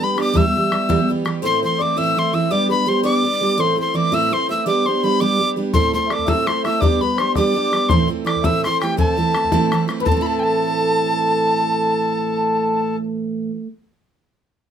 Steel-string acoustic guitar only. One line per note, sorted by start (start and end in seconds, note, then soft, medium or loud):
0.00 0.15 G3 medium
0.00 0.16 B3 medium
0.00 0.17 D4 medium
0.00 0.18 G4 medium
0.16 0.32 G3 medium
0.16 0.33 B3 medium
0.16 0.34 D4 medium
0.16 0.34 G4 medium
0.33 0.45 E3 loud
0.33 0.45 G3 medium
0.33 0.44 B3 medium
0.33 0.43 G4 loud
0.44 0.55 B3 medium
0.44 0.55 G4 medium
0.55 0.70 E3 soft
0.55 0.71 G3 medium
0.55 0.72 B3 medium
0.55 0.72 G4 medium
0.71 0.88 E3 medium
0.71 0.88 G3 medium
0.71 0.88 B3 medium
0.71 0.89 G4 medium
0.89 0.99 E3 medium
0.89 0.99 G3 loud
0.89 0.99 B3 loud
0.89 0.98 G4 loud
0.99 1.09 G3 soft
0.99 1.09 B3 medium
0.99 1.09 G4 medium
1.09 1.24 E3 medium
1.09 1.24 G3 medium
1.09 1.25 B3 medium
1.09 1.26 G4 medium
1.25 1.42 E3 medium
1.25 1.42 G3 medium
1.25 1.43 B3 medium
1.25 1.43 G4 medium
1.42 1.63 A2 medium
1.42 1.61 E3 medium
1.42 1.63 A3 loud
1.42 1.62 C4 medium
1.42 1.63 E4 medium
1.62 1.78 E3 soft
1.62 1.80 A3 medium
1.62 1.79 C4 medium
1.62 1.80 E4 medium
1.79 1.95 E3 medium
1.79 1.96 A3 medium
1.79 1.96 C4 medium
1.79 1.97 E4 medium
1.96 2.17 A2 medium
1.96 2.14 E3 medium
1.96 2.16 A3 medium
1.96 2.16 C4 medium
1.96 2.17 E4 loud
2.16 2.32 E3 medium
2.16 2.34 A3 medium
2.16 2.33 C4 medium
2.16 2.34 E4 medium
2.33 2.50 E3 medium
2.33 2.51 A3 medium
2.33 2.50 C4 medium
2.33 2.51 E4 medium
2.50 2.68 G3 medium
2.50 2.69 B3 medium
2.50 2.70 D4 medium
2.50 2.70 G4 medium
2.69 2.85 G3 medium
2.69 2.86 B3 medium
2.69 2.86 D4 medium
2.69 2.87 G4 medium
2.86 3.02 G3 medium
2.86 3.02 B3 medium
2.86 3.03 D4 medium
2.86 3.04 G4 medium
3.03 3.22 G3 medium
3.03 3.23 B3 loud
3.03 3.24 D4 medium
3.03 3.25 G4 medium
3.24 3.40 G3 medium
3.24 3.41 B3 medium
3.24 3.41 D4 medium
3.24 3.42 G4 medium
3.41 3.57 G3 medium
3.41 3.58 B3 medium
3.41 3.58 D4 medium
3.41 3.58 G4 medium
3.57 3.78 A2 loud
3.57 3.75 E3 medium
3.57 3.77 A3 medium
3.57 3.76 C4 medium
3.57 3.77 E4 medium
3.76 3.93 E3 medium
3.76 3.94 A3 medium
3.76 3.93 C4 medium
3.76 3.94 E4 medium
3.94 4.11 E3 medium
3.94 4.12 A3 medium
3.94 4.11 C4 medium
3.94 4.12 E4 medium
4.12 4.32 A2 medium
4.12 4.29 E3 medium
4.12 4.31 A3 medium
4.12 4.30 C4 medium
4.12 4.32 E4 loud
4.30 4.48 E3 medium
4.30 4.49 A3 medium
4.30 4.48 C4 medium
4.30 4.50 E4 medium
4.49 4.66 E3 medium
4.49 4.66 A3 medium
4.49 4.66 C4 medium
4.49 4.67 E4 medium
4.66 4.85 G3 medium
4.66 4.86 B3 medium
4.66 4.86 D4 medium
4.66 4.87 G4 medium
4.86 5.02 G3 medium
4.86 5.03 B3 medium
4.86 5.04 D4 medium
4.86 5.04 G4 medium
5.03 5.20 G3 medium
5.03 5.21 B3 medium
5.03 5.21 D4 medium
5.03 5.22 G4 medium
5.21 5.38 G3 loud
5.21 5.39 B3 medium
5.21 5.39 D4 medium
5.21 5.41 G4 medium
5.39 5.55 G3 medium
5.39 5.56 B3 medium
5.39 5.56 D4 medium
5.39 5.57 G4 medium
5.56 5.74 G3 medium
5.56 5.74 B3 medium
5.56 5.75 D4 medium
5.56 5.75 G4 medium
5.74 5.94 A2 medium
5.74 5.92 A3 medium
5.74 5.93 C4 medium
5.74 5.94 E4 medium
5.74 5.94 A4 loud
5.93 6.09 A3 medium
5.93 6.10 C4 medium
5.93 6.11 E4 medium
5.93 6.11 A4 medium
6.11 6.26 A3 medium
6.11 6.27 C4 medium
6.11 6.27 E4 medium
6.11 6.27 A4 medium
6.27 6.47 A2 medium
6.27 6.46 A3 medium
6.27 6.47 C4 medium
6.27 6.47 E4 medium
6.27 6.48 A4 loud
6.47 6.63 A3 medium
6.47 6.64 C4 medium
6.47 6.64 E4 medium
6.47 6.66 A4 medium
6.64 6.81 A3 medium
6.64 6.82 C4 medium
6.64 6.83 E4 medium
6.64 6.83 A4 medium
6.82 7.00 G3 medium
6.82 7.01 B3 medium
6.82 7.02 D4 loud
6.82 7.02 G4 medium
7.01 7.17 G3 medium
7.01 7.18 B3 medium
7.01 7.18 D4 medium
7.01 7.19 G4 medium
7.18 7.35 G3 medium
7.18 7.36 B3 medium
7.18 7.35 D4 medium
7.18 7.37 G4 medium
7.36 7.53 G3 medium
7.36 7.54 B3 medium
7.36 7.55 D4 medium
7.36 7.56 G4 loud
7.54 7.70 G3 medium
7.54 7.72 B3 medium
7.54 7.73 D4 medium
7.54 7.73 G4 medium
7.72 7.89 G3 medium
7.72 7.90 B3 medium
7.72 7.90 D4 medium
7.72 7.91 G4 medium
7.90 8.09 A2 medium
7.90 8.07 E3 medium
7.90 8.08 A3 loud
7.90 8.07 C4 medium
7.90 8.09 E4 medium
8.08 8.23 E3 medium
8.08 8.25 A3 medium
8.08 8.25 C4 medium
8.08 8.25 E4 medium
8.25 8.43 E3 medium
8.25 8.44 A3 medium
8.25 8.43 C4 medium
8.25 8.44 E4 medium
8.44 8.64 A2 medium
8.44 8.63 E3 loud
8.44 8.64 A3 medium
8.44 8.64 C4 loud
8.44 8.64 E4 medium
8.64 8.80 E3 medium
8.64 8.82 A3 medium
8.64 8.81 C4 medium
8.64 8.82 E4 medium
8.81 8.97 E3 medium
8.81 8.97 A3 medium
8.81 8.97 C4 medium
8.81 8.97 E4 medium
8.97 9.17 A2 medium
8.97 9.16 E3 medium
8.97 9.17 A3 medium
8.97 9.17 C4 loud
8.97 9.18 E4 loud
9.17 9.33 E3 medium
9.17 9.35 A3 medium
9.17 9.34 C4 medium
9.17 9.35 E4 medium
9.34 9.51 E3 medium
9.34 9.52 A3 medium
9.34 9.51 C4 medium
9.34 9.52 E4 medium
9.52 9.71 A2 loud
9.52 9.70 E3 loud
9.52 9.72 A3 loud
9.52 9.72 C4 medium
9.52 9.72 E4 loud
9.72 9.86 E3 medium
9.72 9.88 A3 medium
9.72 9.88 C4 medium
9.72 9.89 E4 medium
9.88 10.05 E3 medium
9.88 10.06 A3 medium
9.88 10.06 C4 medium
9.88 10.06 E4 medium
10.00 13.50 A2 medium
10.06 13.56 E3 medium
10.11 13.61 C4 loud
10.17 13.67 A3 medium
10.21 13.71 E4 loud